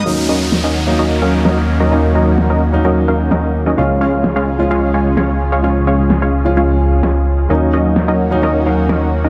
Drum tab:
SD |--o---o-|--o---o-|--o---o-|--o---o-|

SD |--o---o-|